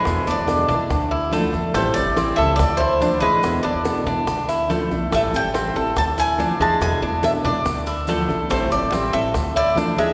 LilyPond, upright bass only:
\new Staff \with { instrumentName = "Upright bass" } { \clef bass \time 4/4 \key d \dorian \tempo 4 = 142 e,8 e,16 e,8. e,8 d,4. e,8 | a,,8 a,,16 a,,8. cis,8 d,4. a,,8 | e,8 e,16 e,8. e,8 d,4. b,,8 | a,,8 a,,16 a,,8. a,,8 d,4. dis,8 |
e,8 e,16 e,8. e,8 d,4. b,,8 | a,,8 a,,16 a,,8. a,,8 d,4. dis,8 | }